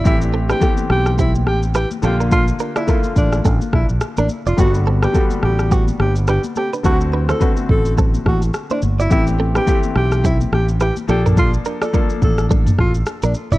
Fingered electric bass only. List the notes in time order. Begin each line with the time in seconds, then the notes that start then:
0.05 A1
0.90 B1
1.47 A1
2.03 A#1
3.16 A1
3.45 A1
3.73 A#1
3.90 A#1
4.18 A1
4.46 F1
4.58 G1
5.43 A1
5.99 G1
6.84 D2
7.69 A1
8.26 A1
8.83 G1
9.11 A1
9.96 B1
10.52 A1
11.09 A#1
12.22 A1
12.79 A1
13.23 A#1
13.52 F1